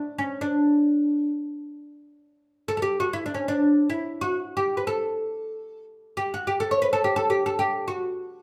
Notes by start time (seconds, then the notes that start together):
Already playing: D4
0.18 C#4
0.41 D4
2.68 A4
2.77 A4
2.82 G4
3.00 F#4
3.13 E4
3.26 D4
3.34 C#4
3.48 D4
3.90 E4
4.21 F#4
4.57 G4
4.77 B4
4.87 A4
6.17 G4
6.34 F#4
6.47 G4
6.60 A4
6.71 C#5
6.82 B4
6.93 A4
7.04 G4
7.16 A4
7.30 G4
7.46 A4
7.59 G4
7.88 F#4